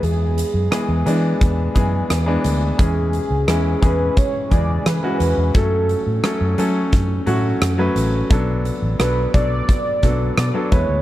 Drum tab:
HH |xxxxxxxx|xxxxxxxx|xxxxxxxx|xxxxxxxx|
SD |--r---r-|--r---r-|--r---r-|--r---r-|
BD |----oo--|o--ooo--|o---o---|o--ooo-o|